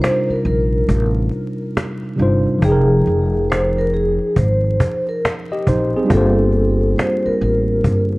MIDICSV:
0, 0, Header, 1, 6, 480
1, 0, Start_track
1, 0, Tempo, 869565
1, 1448, Time_signature, 4, 2, 24, 8
1, 4518, End_track
2, 0, Start_track
2, 0, Title_t, "Vibraphone"
2, 0, Program_c, 0, 11
2, 9, Note_on_c, 0, 72, 88
2, 147, Note_off_c, 0, 72, 0
2, 169, Note_on_c, 0, 70, 77
2, 243, Note_off_c, 0, 70, 0
2, 256, Note_on_c, 0, 70, 69
2, 624, Note_off_c, 0, 70, 0
2, 1456, Note_on_c, 0, 68, 104
2, 1910, Note_off_c, 0, 68, 0
2, 1932, Note_on_c, 0, 72, 80
2, 2084, Note_off_c, 0, 72, 0
2, 2089, Note_on_c, 0, 70, 85
2, 2164, Note_off_c, 0, 70, 0
2, 2174, Note_on_c, 0, 68, 80
2, 2389, Note_off_c, 0, 68, 0
2, 2415, Note_on_c, 0, 72, 74
2, 2783, Note_off_c, 0, 72, 0
2, 2808, Note_on_c, 0, 70, 71
2, 2883, Note_off_c, 0, 70, 0
2, 3375, Note_on_c, 0, 69, 89
2, 3830, Note_off_c, 0, 69, 0
2, 3854, Note_on_c, 0, 72, 90
2, 3990, Note_off_c, 0, 72, 0
2, 4007, Note_on_c, 0, 70, 77
2, 4082, Note_off_c, 0, 70, 0
2, 4097, Note_on_c, 0, 70, 74
2, 4464, Note_off_c, 0, 70, 0
2, 4518, End_track
3, 0, Start_track
3, 0, Title_t, "Tine electric piano"
3, 0, Program_c, 1, 4
3, 0, Control_c, 1, 64, 127
3, 0, Note_on_c, 1, 48, 72
3, 0, Note_on_c, 1, 55, 68
3, 0, Note_on_c, 1, 62, 64
3, 0, Note_on_c, 1, 63, 73
3, 0, Note_on_c, 1, 65, 65
3, 0, Note_on_c, 1, 70, 79
3, 1175, Note_off_c, 1, 48, 0
3, 1183, Note_off_c, 1, 55, 0
3, 1189, Note_off_c, 1, 62, 0
3, 1191, Note_on_c, 1, 48, 55
3, 1197, Note_off_c, 1, 63, 0
3, 1199, Note_on_c, 1, 55, 52
3, 1204, Note_off_c, 1, 65, 0
3, 1207, Note_on_c, 1, 62, 54
3, 1210, Note_off_c, 1, 70, 0
3, 1213, Note_on_c, 1, 63, 49
3, 1220, Note_on_c, 1, 65, 51
3, 1227, Note_on_c, 1, 72, 66
3, 1428, Note_on_c, 1, 53, 72
3, 1439, Note_off_c, 1, 63, 0
3, 1440, Note_off_c, 1, 48, 0
3, 1444, Note_off_c, 1, 55, 0
3, 1446, Note_on_c, 1, 63, 61
3, 1447, Note_off_c, 1, 62, 0
3, 1454, Note_off_c, 1, 65, 0
3, 1456, Control_c, 1, 64, 0
3, 1457, Note_off_c, 1, 72, 0
3, 1463, Note_on_c, 1, 79, 68
3, 1482, Note_on_c, 1, 68, 64
3, 1499, Note_on_c, 1, 70, 75
3, 1552, Control_c, 1, 64, 127
3, 2865, Note_off_c, 1, 63, 0
3, 2873, Note_off_c, 1, 79, 0
3, 2883, Note_off_c, 1, 68, 0
3, 2892, Note_off_c, 1, 70, 0
3, 3046, Note_on_c, 1, 75, 62
3, 3049, Note_on_c, 1, 67, 57
3, 3126, Note_off_c, 1, 75, 0
3, 3128, Note_off_c, 1, 67, 0
3, 3138, Note_on_c, 1, 72, 68
3, 3141, Note_on_c, 1, 63, 61
3, 3279, Note_off_c, 1, 72, 0
3, 3281, Note_off_c, 1, 63, 0
3, 3293, Note_on_c, 1, 68, 63
3, 3295, Note_on_c, 1, 60, 53
3, 3335, Note_on_c, 1, 55, 67
3, 3336, Note_off_c, 1, 53, 0
3, 3349, Note_on_c, 1, 62, 60
3, 3364, Note_on_c, 1, 65, 62
3, 3375, Control_c, 1, 64, 0
3, 3377, Note_on_c, 1, 67, 56
3, 3392, Note_on_c, 1, 58, 62
3, 3407, Note_on_c, 1, 72, 73
3, 3460, Control_c, 1, 64, 127
3, 3516, Note_off_c, 1, 68, 0
3, 3517, Note_off_c, 1, 60, 0
3, 4518, Note_off_c, 1, 55, 0
3, 4518, Note_off_c, 1, 58, 0
3, 4518, Note_off_c, 1, 62, 0
3, 4518, Note_off_c, 1, 65, 0
3, 4518, Note_off_c, 1, 67, 0
3, 4518, Note_off_c, 1, 72, 0
3, 4518, End_track
4, 0, Start_track
4, 0, Title_t, "Upright bass"
4, 0, Program_c, 2, 32
4, 248, Note_on_c, 2, 34, 93
4, 466, Note_off_c, 2, 34, 0
4, 490, Note_on_c, 2, 33, 104
4, 707, Note_off_c, 2, 33, 0
4, 1211, Note_on_c, 2, 31, 88
4, 1349, Note_off_c, 2, 31, 0
4, 1449, Note_on_c, 2, 29, 109
4, 1666, Note_off_c, 2, 29, 0
4, 1694, Note_on_c, 2, 29, 88
4, 2303, Note_off_c, 2, 29, 0
4, 2409, Note_on_c, 2, 32, 99
4, 2627, Note_off_c, 2, 32, 0
4, 3130, Note_on_c, 2, 34, 86
4, 3269, Note_off_c, 2, 34, 0
4, 3370, Note_on_c, 2, 31, 111
4, 3827, Note_off_c, 2, 31, 0
4, 4092, Note_on_c, 2, 33, 93
4, 4308, Note_off_c, 2, 33, 0
4, 4329, Note_on_c, 2, 31, 92
4, 4518, Note_off_c, 2, 31, 0
4, 4518, End_track
5, 0, Start_track
5, 0, Title_t, "Cajon"
5, 21, Note_on_c, 9, 38, 109
5, 76, Note_off_c, 9, 38, 0
5, 159, Note_on_c, 9, 38, 25
5, 214, Note_off_c, 9, 38, 0
5, 251, Note_on_c, 9, 38, 35
5, 306, Note_off_c, 9, 38, 0
5, 490, Note_on_c, 9, 36, 79
5, 545, Note_off_c, 9, 36, 0
5, 644, Note_on_c, 9, 38, 25
5, 699, Note_off_c, 9, 38, 0
5, 724, Note_on_c, 9, 38, 43
5, 779, Note_off_c, 9, 38, 0
5, 977, Note_on_c, 9, 38, 107
5, 1032, Note_off_c, 9, 38, 0
5, 1120, Note_on_c, 9, 38, 24
5, 1176, Note_off_c, 9, 38, 0
5, 1202, Note_on_c, 9, 38, 40
5, 1257, Note_off_c, 9, 38, 0
5, 1362, Note_on_c, 9, 38, 26
5, 1418, Note_off_c, 9, 38, 0
5, 1448, Note_on_c, 9, 36, 108
5, 1503, Note_off_c, 9, 36, 0
5, 1597, Note_on_c, 9, 38, 25
5, 1652, Note_off_c, 9, 38, 0
5, 1680, Note_on_c, 9, 38, 37
5, 1735, Note_off_c, 9, 38, 0
5, 1840, Note_on_c, 9, 38, 25
5, 1895, Note_off_c, 9, 38, 0
5, 1941, Note_on_c, 9, 38, 115
5, 1997, Note_off_c, 9, 38, 0
5, 2082, Note_on_c, 9, 38, 25
5, 2137, Note_off_c, 9, 38, 0
5, 2172, Note_on_c, 9, 38, 34
5, 2227, Note_off_c, 9, 38, 0
5, 2311, Note_on_c, 9, 38, 26
5, 2366, Note_off_c, 9, 38, 0
5, 2408, Note_on_c, 9, 36, 83
5, 2464, Note_off_c, 9, 36, 0
5, 2562, Note_on_c, 9, 38, 25
5, 2617, Note_off_c, 9, 38, 0
5, 2650, Note_on_c, 9, 36, 101
5, 2705, Note_off_c, 9, 36, 0
5, 2796, Note_on_c, 9, 38, 28
5, 2851, Note_off_c, 9, 38, 0
5, 2898, Note_on_c, 9, 38, 115
5, 2953, Note_off_c, 9, 38, 0
5, 3040, Note_on_c, 9, 38, 26
5, 3095, Note_off_c, 9, 38, 0
5, 3129, Note_on_c, 9, 36, 86
5, 3184, Note_off_c, 9, 36, 0
5, 3280, Note_on_c, 9, 38, 24
5, 3335, Note_off_c, 9, 38, 0
5, 3368, Note_on_c, 9, 36, 113
5, 3423, Note_off_c, 9, 36, 0
5, 3518, Note_on_c, 9, 38, 26
5, 3574, Note_off_c, 9, 38, 0
5, 3600, Note_on_c, 9, 38, 36
5, 3655, Note_off_c, 9, 38, 0
5, 3759, Note_on_c, 9, 38, 27
5, 3815, Note_off_c, 9, 38, 0
5, 3859, Note_on_c, 9, 38, 110
5, 3914, Note_off_c, 9, 38, 0
5, 3998, Note_on_c, 9, 38, 24
5, 4053, Note_off_c, 9, 38, 0
5, 4092, Note_on_c, 9, 38, 35
5, 4147, Note_off_c, 9, 38, 0
5, 4329, Note_on_c, 9, 36, 78
5, 4385, Note_off_c, 9, 36, 0
5, 4485, Note_on_c, 9, 38, 26
5, 4518, Note_off_c, 9, 38, 0
5, 4518, End_track
6, 0, Start_track
6, 0, Title_t, "Muted upright bass strokes"
6, 164, Note_on_c, 9, 29, 48
6, 219, Note_off_c, 9, 29, 0
6, 4006, Note_on_c, 9, 29, 46
6, 4061, Note_off_c, 9, 29, 0
6, 4518, End_track
0, 0, End_of_file